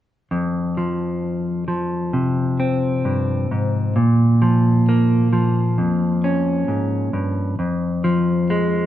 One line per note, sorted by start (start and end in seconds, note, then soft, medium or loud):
0.31 3.05 F2 soft
0.77 1.67 F3 soft
1.68 4.41 F3 soft
2.13 3.90 C3 soft
2.60 3.96 C4 soft
3.05 3.51 G2 soft
3.51 3.97 G#2 soft
3.96 5.78 A#2 soft
4.42 5.32 F3 soft
4.89 7.55 A#3 soft
5.33 8.04 F3 soft
5.78 6.68 F2 soft
6.24 7.55 C#4 soft
6.68 7.13 G#2 soft
7.13 7.59 G2 soft
7.59 8.86 F2 soft
8.04 8.86 F3 soft
8.50 8.86 G#3 soft